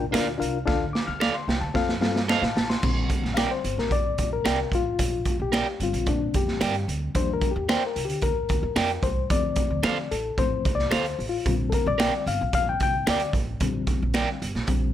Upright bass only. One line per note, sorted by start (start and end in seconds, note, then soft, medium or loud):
0.14 0.34 D2 medium
0.40 0.61 C2 medium
0.67 0.88 D2 loud
1.08 1.28 D2 medium
1.48 1.58 C2 medium
1.61 1.72 D2 medium
1.75 2.01 F2 loud
2.01 2.33 G2 medium
2.42 2.53 A2 medium
2.56 2.77 A1 medium
2.83 3.04 A#1 loud
3.23 3.44 A#1 medium
3.64 3.75 G1 medium
3.77 4.08 A#1 medium
4.19 4.39 A#1 medium
4.45 4.66 C2 medium
4.72 4.92 A1 medium
4.99 5.20 A#1 loud
5.40 5.60 A#1 medium
5.80 5.90 G1 medium
5.93 6.04 A#1 medium
6.07 6.28 A#2 medium
6.34 6.55 F2 medium
6.61 6.82 G2 medium
6.88 7.09 D2 medium
7.15 7.35 D#2 loud
7.56 7.76 D#2 loud
7.96 8.08 C2 medium
8.08 8.29 D2 medium
8.50 8.60 D2 medium
8.63 8.73 D#2 medium
8.76 8.97 F2 medium
9.03 9.23 C2 medium
9.30 9.51 D2 loud
9.70 9.81 D2 medium
9.84 10.05 D3 medium
10.12 10.32 A1 medium
10.38 10.58 A1 medium
10.65 10.86 C2 medium
10.92 11.12 D2 medium
11.19 11.39 A1 medium
11.46 11.66 A#1 loud
11.86 12.07 A#1 medium
12.26 12.37 G1 medium
12.41 12.51 A#1 medium
12.53 12.74 A#1 loud
12.80 13.01 C2 medium
13.08 13.28 D2 medium
13.33 13.54 A1 medium
13.61 13.81 A#1 medium
14.02 14.22 A#1 medium
14.42 14.52 G1 medium
14.55 14.65 A#1 medium
14.67 14.88 A#1 medium